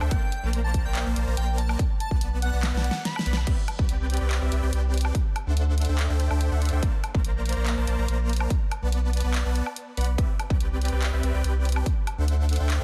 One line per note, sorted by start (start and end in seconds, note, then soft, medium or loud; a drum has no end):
0.01 0.09 D2 loud
0.01 0.10 D4 loud
0.01 0.10 A4 medium
0.01 0.10 C5 medium
0.01 0.10 E5 medium
0.01 0.10 G5 loud
0.01 high woodblock medium
0.11 0.18 A#1 medium
0.11 0.21 A#3 loud
0.11 0.21 A#4 medium
0.11 0.21 C5 medium
0.11 0.21 D5 medium
0.11 0.43 G5 medium
0.11 0.21 A5 loud
0.11 kick loud
0.11 closed hi-hat medium
0.32 closed hi-hat medium
0.43 0.83 A#1 loud
0.43 0.83 A#3 medium
0.43 0.83 A#4 medium
0.43 0.83 C5 medium
0.43 0.83 D5 medium
0.43 0.83 A#5 loud
0.53 closed hi-hat medium
0.64 0.76 A5 medium
0.74 kick medium
0.74 closed hi-hat medium
0.85 1.04 A#1 medium
0.85 1.04 A#3 medium
0.85 1.04 A#4 medium
0.85 1.04 C5 medium
0.85 1.04 D5 medium
0.85 0.97 G5 loud
0.85 1.04 A#5 medium
0.95 clap loud
0.95 closed hi-hat medium
1.06 1.14 A#1 medium
1.06 1.15 A#3 medium
1.06 1.15 A#4 medium
1.06 1.15 C5 medium
1.06 1.15 D5 medium
1.06 1.15 A5 medium
1.16 1.25 A#1 loud
1.16 1.26 A#3 medium
1.16 1.26 A#4 medium
1.16 1.26 C5 medium
1.16 1.26 D5 medium
1.16 1.26 A5 medium
1.16 closed hi-hat medium
1.27 1.35 A#1 loud
1.27 1.35 A#3 loud
1.27 1.35 A#4 medium
1.27 1.35 C5 medium
1.27 1.35 D5 medium
1.27 1.35 A#5 loud
1.37 1.76 A#1 loud
1.37 1.78 A#3 medium
1.37 1.78 A#4 medium
1.37 1.78 C5 medium
1.37 1.78 D5 medium
1.37 1.50 G5 loud
1.37 1.78 A#5 loud
1.37 closed hi-hat medium
1.58 1.71 A5 medium
1.58 closed hi-hat medium
1.69 high woodblock medium
1.79 kick loud
1.79 closed hi-hat medium
2.00 2.13 A5 loud
2.00 closed hi-hat medium
2.11 2.51 B1 loud
2.11 2.51 B3 medium
2.11 2.51 B4 medium
2.11 2.51 D5 medium
2.11 2.51 F#5 medium
2.11 2.51 A5 medium
2.11 kick medium
2.21 closed hi-hat medium
2.42 2.55 F#5 medium
2.42 closed hi-hat medium
2.53 2.72 B1 medium
2.53 2.71 B3 medium
2.53 2.71 B4 medium
2.53 2.71 D5 medium
2.53 2.71 F#5 medium
2.53 2.72 A5 medium
2.63 snare medium
2.63 clap loud
2.63 closed hi-hat medium
2.74 2.90 B1 medium
2.74 2.93 B3 loud
2.74 2.93 B4 medium
2.74 2.93 D5 medium
2.74 2.93 F#5 medium
2.74 2.93 A5 loud
2.74 snare medium
2.84 2.97 F#5 medium
2.84 closed hi-hat medium
2.91 snare medium
3.05 3.37 B5 loud
3.05 snare medium
3.05 closed hi-hat medium
3.16 snare loud
3.16 high woodblock medium
3.26 3.45 B1 loud
3.26 3.35 B3 medium
3.26 3.35 B4 medium
3.26 3.35 D5 medium
3.26 3.35 F#5 medium
3.26 3.35 B5 medium
3.26 closed hi-hat medium
3.33 snare loud
3.33 high woodblock medium
3.47 3.54 C2 loud
3.47 3.56 C4 loud
3.47 3.56 G4 loud
3.47 3.56 B4 medium
3.47 3.56 D5 loud
3.47 3.56 E5 loud
3.47 kick loud
3.47 closed hi-hat medium
3.47 crash loud
3.68 closed hi-hat medium
3.68 high woodblock medium
3.79 4.19 C2 loud
3.79 4.18 C4 medium
3.79 4.18 G4 medium
3.79 4.18 B4 medium
3.79 4.18 D5 medium
3.79 4.18 G5 loud
3.79 kick loud
3.89 closed hi-hat medium
4.10 closed hi-hat medium
4.14 closed hi-hat medium
4.17 4.39 C4 medium
4.17 4.39 G4 medium
4.17 4.39 B4 medium
4.17 4.39 D5 medium
4.17 4.39 G5 medium
4.17 closed hi-hat medium
4.21 4.40 C2 loud
4.31 clap loud
4.31 closed hi-hat medium
4.42 4.50 C2 medium
4.42 4.50 C4 medium
4.42 4.50 G4 medium
4.42 4.50 B4 medium
4.42 4.50 D5 medium
4.42 4.50 E5 medium
4.52 4.61 C2 loud
4.52 4.61 C4 medium
4.52 4.61 G4 medium
4.52 4.61 B4 medium
4.52 4.61 D5 medium
4.52 4.61 E5 medium
4.52 closed hi-hat medium
4.63 4.71 C2 loud
4.63 4.70 C4 loud
4.63 4.70 G4 medium
4.63 4.70 B4 medium
4.63 4.70 D5 medium
4.63 4.70 G5 loud
4.73 5.12 C2 loud
4.73 5.14 C4 medium
4.73 5.14 G4 medium
4.73 5.14 B4 medium
4.73 5.14 D5 medium
4.73 5.14 G5 loud
4.73 closed hi-hat medium
4.94 closed hi-hat medium
4.98 closed hi-hat medium
5.01 closed hi-hat medium
5.01 high woodblock medium
5.15 kick loud
5.15 closed hi-hat medium
5.36 closed hi-hat medium
5.36 high woodblock medium
5.47 5.87 D2 loud
5.47 5.86 D4 medium
5.47 5.86 A4 medium
5.47 5.86 C5 medium
5.47 5.86 E5 medium
5.47 5.86 F#5 medium
5.57 closed hi-hat medium
5.78 closed hi-hat soft
5.81 closed hi-hat medium
5.85 6.08 D2 medium
5.85 closed hi-hat medium
5.89 6.07 D4 medium
5.89 6.07 A4 medium
5.89 6.07 C5 medium
5.89 6.07 E5 medium
5.89 6.07 G5 medium
5.99 clap loud
5.99 closed hi-hat medium
6.10 6.28 D2 medium
6.10 6.28 D4 medium
6.10 6.28 A4 medium
6.10 6.28 C5 medium
6.10 6.28 E5 medium
6.10 6.28 G5 loud
6.20 closed hi-hat medium
6.31 6.49 D2 loud
6.31 6.49 D4 loud
6.31 6.49 A4 medium
6.31 6.49 C5 medium
6.31 6.49 E5 medium
6.31 6.49 G5 loud
6.31 high woodblock medium
6.41 closed hi-hat medium
6.52 6.70 D2 loud
6.52 6.70 D4 medium
6.52 6.70 A4 medium
6.52 6.70 C5 medium
6.52 6.70 E5 medium
6.52 6.70 F#5 medium
6.62 closed hi-hat medium
6.65 closed hi-hat medium
6.69 6.81 D2 medium
6.69 6.81 D4 loud
6.69 6.81 A4 medium
6.69 6.81 C5 medium
6.69 6.81 G5 loud
6.69 closed hi-hat medium
6.73 6.81 E5 medium
6.83 6.90 A#1 loud
6.83 6.92 A#3 loud
6.83 6.92 A#4 medium
6.83 6.92 C5 medium
6.83 6.92 D5 medium
6.83 6.92 A5 loud
6.83 kick loud
6.83 closed hi-hat medium
7.04 closed hi-hat medium
7.04 high woodblock medium
7.15 7.54 A#1 loud
7.15 7.54 A#3 medium
7.15 7.54 A#4 medium
7.15 7.54 C5 medium
7.15 7.54 D5 medium
7.15 7.54 A#5 loud
7.15 kick loud
7.25 closed hi-hat medium
7.46 closed hi-hat soft
7.49 closed hi-hat medium
7.53 7.75 A#1 medium
7.53 7.75 A#3 medium
7.53 7.75 A#4 medium
7.53 7.75 C5 medium
7.53 7.75 D5 medium
7.53 closed hi-hat medium
7.57 7.75 A#5 medium
7.66 clap loud
7.66 closed hi-hat medium
7.78 7.86 A#1 loud
7.78 7.86 A#3 medium
7.78 7.86 A#4 medium
7.78 7.86 C5 medium
7.78 7.86 D5 medium
7.78 7.86 A5 medium
7.87 7.96 A#1 loud
7.87 7.97 A#3 medium
7.87 7.97 A#4 medium
7.87 7.97 C5 medium
7.87 7.97 D5 medium
7.87 7.97 A5 medium
7.87 closed hi-hat medium
7.98 8.06 A#1 loud
7.98 8.06 A#3 medium
7.98 8.06 A#4 medium
7.98 8.06 C5 medium
7.98 8.06 D5 medium
7.98 8.06 A#5 loud
8.08 8.47 A#1 loud
8.08 8.49 A#3 medium
8.08 8.49 A#4 medium
8.08 8.49 C5 medium
8.08 8.49 D5 medium
8.08 8.49 A#5 loud
8.08 closed hi-hat medium
8.29 closed hi-hat medium
8.33 closed hi-hat medium
8.36 closed hi-hat medium
8.40 high woodblock medium
8.50 kick loud
8.50 closed hi-hat medium
8.71 closed hi-hat medium
8.71 high woodblock medium
8.82 9.22 B1 loud
8.82 9.22 B3 medium
8.82 9.22 B4 medium
8.82 9.22 D5 medium
8.82 9.22 F#5 medium
8.82 9.22 A5 medium
8.92 closed hi-hat medium
9.13 closed hi-hat soft
9.17 closed hi-hat medium
9.21 9.43 B1 loud
9.21 9.43 B3 medium
9.21 9.43 B4 medium
9.21 9.43 D5 medium
9.21 9.43 F#5 medium
9.21 9.43 A5 medium
9.21 closed hi-hat medium
9.34 clap loud
9.34 closed hi-hat medium
9.45 9.61 B1 medium
9.45 9.64 B3 loud
9.45 9.64 B4 medium
9.45 9.64 D5 medium
9.45 9.64 F#5 medium
9.45 9.64 A5 loud
9.55 closed hi-hat medium
9.66 high woodblock medium
9.76 closed hi-hat medium
9.97 10.16 B1 loud
9.97 10.07 B3 medium
9.97 10.07 B4 medium
9.97 10.07 D5 medium
9.97 10.07 F#5 medium
9.97 10.07 B5 medium
9.97 closed hi-hat medium
10.01 closed hi-hat medium
10.04 closed hi-hat medium
10.18 10.25 C2 loud
10.18 10.28 C4 loud
10.18 10.28 G4 medium
10.18 10.28 B4 loud
10.18 10.28 D5 medium
10.18 10.28 E5 loud
10.18 kick loud
10.18 closed hi-hat medium
10.39 closed hi-hat medium
10.39 high woodblock medium
10.50 10.90 C2 loud
10.50 10.90 C4 medium
10.50 10.90 G4 medium
10.50 10.90 B4 medium
10.50 10.90 D5 medium
10.50 10.90 G5 loud
10.50 kick loud
10.61 closed hi-hat medium
10.81 closed hi-hat soft
10.85 closed hi-hat medium
10.88 11.11 C2 medium
10.88 11.11 C4 medium
10.88 11.11 G4 medium
10.88 11.11 B4 medium
10.88 11.11 D5 medium
10.88 11.11 G5 medium
10.88 closed hi-hat medium
11.02 clap loud
11.02 closed hi-hat medium
11.13 11.21 C2 medium
11.13 11.22 C4 medium
11.13 11.22 G4 medium
11.13 11.22 B4 medium
11.13 11.22 D5 medium
11.13 11.22 E5 medium
11.23 11.32 C2 medium
11.23 11.33 C4 medium
11.23 11.33 G4 medium
11.23 11.33 B4 medium
11.23 11.33 D5 medium
11.23 11.33 E5 medium
11.23 closed hi-hat medium
11.34 11.42 C2 loud
11.34 11.42 C4 loud
11.34 11.42 G4 medium
11.34 11.42 B4 medium
11.34 11.42 D5 medium
11.34 11.42 G5 loud
11.44 11.83 C2 loud
11.44 11.85 C4 medium
11.44 11.85 G4 medium
11.44 11.85 B4 medium
11.44 11.85 D5 medium
11.44 11.85 G5 medium
11.44 closed hi-hat medium
11.65 closed hi-hat soft
11.69 closed hi-hat medium
11.72 closed hi-hat medium
11.72 high woodblock medium
11.86 kick loud
11.86 closed hi-hat medium
12.07 closed hi-hat medium
12.07 high woodblock medium
12.18 12.58 D2 loud
12.18 12.57 D4 medium
12.18 12.57 A4 medium
12.18 12.57 C5 medium
12.18 12.58 E5 medium
12.18 12.57 F#5 medium
12.28 closed hi-hat medium
12.49 closed hi-hat medium
12.53 closed hi-hat medium
12.56 closed hi-hat medium
12.60 12.79 D2 medium
12.60 12.78 D4 medium
12.60 12.78 A4 medium
12.60 12.78 C5 medium
12.60 12.78 E5 medium
12.60 12.79 G5 medium
12.70 clap loud
12.70 closed hi-hat medium